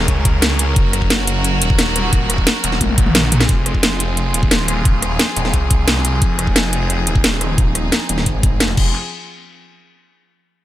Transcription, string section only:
Already playing: F#3 C#4 G#4 A#4
0.76 F#4
3.49 F3 C4 F4 G#4
6.22 D#4
8.77 F3 C4 F4 G#4

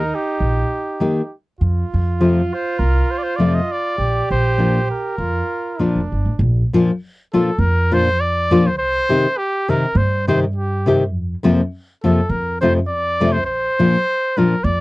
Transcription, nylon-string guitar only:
1.00 D#3 A#3 D#4 G4
2.20 F2 C3 F3 A3 C4 F4
3.38 F2 C3 F3 A3 C4 F4
4.58 A#2 F3 A#3 D4 F4
5.79 A#2 F3 A#3 D4 F4
6.73 A#2 F3 A#3 D4 F4
7.33 A#2 F3 A#3 D4 F4
7.92 A#2 F3 A#3 D4 F4
8.51 A#2 F3 A#3 D4 F4
9.09 C3 D#3 C4 D#4 G4
9.68 C3 D#3 C4 D#4 G4
10.27 C3 D#3 C4 D#4 G4
10.86 C3 D#3 C4 D#4 G4
11.43 F2 C3 F3 A#3 C4 F4
12.04 F2 C3 F3 A#3 C4 F4
12.61 F2 C3 F3 A3 C4 F4
13.20 F2 C3 F3 A3 C4 F4
13.79 A#2 F3 A#3 D4 F4
14.37 A#2 F3 A#3 D4 F4

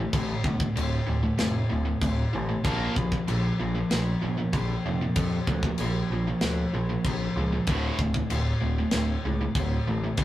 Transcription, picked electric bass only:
0.13 A1
0.45 G1
0.77 D1
1.08 D1
1.41 F1
1.71 D1
2.02 D1
2.35 A1
2.65 A#1
2.97 A#1
3.29 A#1
3.60 A#1
3.92 A#1
4.23 G1
4.53 A#1
4.86 F1
5.17 F2
5.48 D2
5.79 A#1
6.10 A#1
6.42 D2
6.73 A#1
7.05 A#1
7.36 C#2
7.67 D1
7.99 D1
8.31 D1
8.62 D1
8.94 D1
9.25 C#2
9.56 D1
9.88 A1
10.18 A1

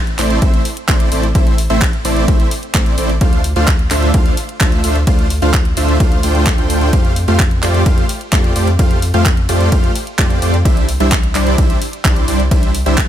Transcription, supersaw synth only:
0.19 A3 C4 E4 C5 D5
0.42 A3 C4 E4 C5 E5
0.88 A3 C4 E4 C5 D5
1.12 A3 C4 E4 C5 D5
1.35 A3 C4 E4 C5 E5
1.70 A3 C4 E4 C5 E5
2.05 A3 C4 E4 C5 D5
2.28 A3 C4 E4 C5 E5
2.75 A3 C4 E4 C5 D5
2.98 A3 C4 E4 C5 D5
3.21 A3 D4 F4 C5 F5
3.56 A3 D4 F4 C5 F5
3.91 A3 D4 F4 C5 E5
4.14 A3 F4 C5
4.61 A3 D4 F4 C5 E5
4.84 A3 D4 F4 C5 E5
5.07 A3 D4 F4 C5 F5
5.42 A3 D4 F4 C5 F5
5.77 A3 D4 F4 C5 E5
6.24 A3 D4 F4 C5 G5
6.58 A3 D4 F4 C5 G5
6.93 A3
7.28 A3 F4 G4 C5 F5
7.63 A3 F4 G4 C5 D5
7.86 A3 F4 G4 C5 F5
8.33 A3 F4 G4 C5 D5
8.56 A3 F4 G4 C5 D5
8.79 A3 F4 G4 C5 F5
9.14 A3 F4 G4 C5 F5
9.49 A3 F4 G4 C5 D5
9.72 G4
10.19 A3 F4 G4 C5 D5
10.42 A3 F4 G4 C5 D5
10.65 G3 D4 E4 C5 E5
11.00 G3 D4 E4 C5 E5
11.35 G3 D4 E4 C5 D5
11.58 G3 D4 E4 C5
12.05 G3 D4 E4 C5 D5
12.28 G3 D4 E4 C5 D5
12.51 G3 D4 E4 C5 E5
12.86 G3 D4 E4 C5 E5

